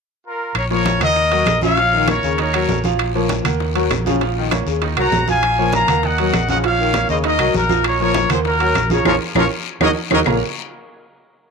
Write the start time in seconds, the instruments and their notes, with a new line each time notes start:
0.27 trumpet section F4 A#4
0.55 fingered electric bass A#1, trumpet section A#4 C#5, high bongo, high conga, high timbale, long guiro, claves
0.70 trombone section F3, upright piano A#3 A#4 C#5, trumpet section A#4 C#5, high bongo, high conga
0.86 high bongo, high conga, high timbale, short guiro
1.01 fingered electric bass D#2, upright piano A#3 A#4 F#5, trumpet section A#4 D#5, high conga, low conga, high timbale, short guiro, claves
1.16 high bongo, high conga, long guiro
1.31 trombone section F#3, upright piano F#3 F#4 A#4, high bongo, high conga, high timbale
1.46 fingered electric bass A#1, high bongo, low bongo, high conga, high timbale, low timbale, short guiro, claves
1.61 trombone section C#3, upright piano F3 F4 F5, trumpet section C#5 F5, high conga, short guiro
1.77 upright piano F3 F4 F5, high bongo, high timbale, long guiro
1.93 trombone section D#3, high bongo, high conga
2.08 upright piano A#3 A#4 C#5, trumpet section A#4 C#5, high bongo, high conga, high timbale, short guiro, claves
2.23 fingered electric bass D#2, trombone section C#3, high bongo, high conga, short guiro
2.38 upright piano D#3 D#4 D#5, trumpet section A#4 C#5, high bongo, high conga, high timbale, long guiro
2.53 upright piano F#3 F#4 A#4, trombone section F#3, high bongo, high conga, high timbale, claves
2.68 fingered electric bass A#1, high bongo, low bongo, high conga, low timbale, short guiro
2.84 upright piano F3 F4 F5, high conga, short guiro
2.99 high bongo, high timbale, long guiro, claves
3.14 trombone section F3, upright piano A#3 A#4 C#5, high bongo, high conga
3.29 high bongo, high conga, high timbale, short guiro
3.45 fingered electric bass D#2, upright piano A#3 A#4 F#5, high bongo, high conga, low conga, high timbale, short guiro, claves
3.60 high bongo, high conga, long guiro
3.75 trombone section F#3, upright piano F#3 F#4 A#4, high bongo, high conga, high timbale
3.90 fingered electric bass A#1, high bongo, low bongo, high conga, high timbale, low timbale, short guiro, claves
4.06 trombone section C#3, upright piano F3 F4 F5, high conga, short guiro
4.21 upright piano F3 F4 F5, high bongo, high conga, high timbale, long guiro
4.36 trombone section D#3, high bongo, high conga
4.51 upright piano A#3 A#4 C#5, high bongo, high conga, high timbale, short guiro, claves
4.66 fingered electric bass D#2, trombone section C#3, high bongo, high conga, short guiro
4.82 upright piano D#3 D#4 D#5, high bongo, high conga, high timbale, long guiro
4.96 fingered electric bass C2, upright piano F#3 F#4 A#4, trombone section F#3, trumpet section F#5 A#5, high bongo, high conga, high timbale, claves
5.12 fingered electric bass A#1, high bongo, low bongo, high conga, low timbale, short guiro
5.28 upright piano F3 F4 F5, trumpet section F5 G#5, high conga, short guiro
5.43 high bongo, high conga, high timbale, long guiro, claves
5.58 trombone section F3, upright piano A#3 A#4 C#5, high bongo, high conga
5.73 trumpet section F5 A#5, high bongo, high conga, high timbale, short guiro
5.88 fingered electric bass D#2, upright piano A#3 A#4 F#5, high bongo, high conga, low conga, high timbale, short guiro, claves
6.03 trumpet section D#5 F#5, high bongo, high conga, low conga, long guiro
6.18 trombone section F#3, upright piano F#3 F#4 A#4, high bongo, high conga, high timbale
6.33 fingered electric bass A#1, high bongo, low bongo, high conga, high timbale, low timbale, short guiro, claves
6.49 trombone section C#3, upright piano F3 F4 F5, trumpet section D#5 F#5, high conga, short guiro
6.64 upright piano F3 F4 F5, trumpet section C#5 F5, high bongo, high conga, high timbale, long guiro
6.79 trombone section D#3, high bongo, high conga
6.94 upright piano A#3 A#4 C#5, high bongo, high conga, high timbale, short guiro, claves
7.09 fingered electric bass D#2, trombone section C#3, trumpet section C5 D#5, high bongo, high conga, short guiro
7.24 upright piano D#3 D#4 D#5, trumpet section A#4 D#5, high bongo, high conga, high timbale, long guiro
7.39 fingered electric bass C2, trombone section F#3, upright piano F#3 F#4 A#4, high conga, high timbale, claves
7.54 fingered electric bass A#1, trumpet section F#4 A#4, high bongo, low bongo, high conga, short guiro
7.69 upright piano F3 F4 F5, high conga, short guiro
7.84 trumpet section A#4 C#5, high bongo, high timbale, long guiro, claves
8.00 trombone section F3, upright piano A#3 A#4 C#5, trumpet section A#4 C#5, high bongo, high conga
8.14 high bongo, high conga, high timbale, short guiro
8.29 fingered electric bass D#2, upright piano A#3 A#4 F#5, trumpet section G#4 C5, high bongo, high conga, low conga, high timbale, short guiro, claves
8.45 trumpet section F#4 A#4, high bongo, high conga, long guiro
8.60 trombone section F#3, upright piano F#3 F#4 A#4, high bongo, high conga, high timbale
8.75 fingered electric bass A#1, high bongo, low bongo, high conga, high timbale, short guiro, claves
8.90 trombone section C#3, upright piano F3 F4 F5, trumpet section A#4 C#5, high conga, short guiro
9.05 fingered electric bass A#1, trombone section A#2 C#3 F3, upright piano C#4 F4 A#4, trumpet section F4 A#4 C#5, low bongo, high conga, high timbale, long guiro, claves
9.35 fingered electric bass A#1, trombone section A#2 C#3 F3, upright piano C#4 F4 A#4, trumpet section F4 A#4 C#5, low bongo, high conga, high timbale, long guiro, claves
9.80 fingered electric bass D#2, trombone section C#3 D#3 F#3, upright piano D#4 F#4 A#4, trumpet section A#4 C#5 D#5, low bongo, high conga, high timbale, long guiro, claves
10.11 fingered electric bass D#2, trombone section C#3 D#3 F#3, upright piano D#4 F#4 A#4, trumpet section A#4 C#5 D#5, low bongo, high conga, high timbale, long guiro, claves
10.26 fingered electric bass A#1, trombone section A#2, upright piano A#3 F4 A#4 C#5 F5 A#5, low bongo, low conga, low timbale, long guiro, claves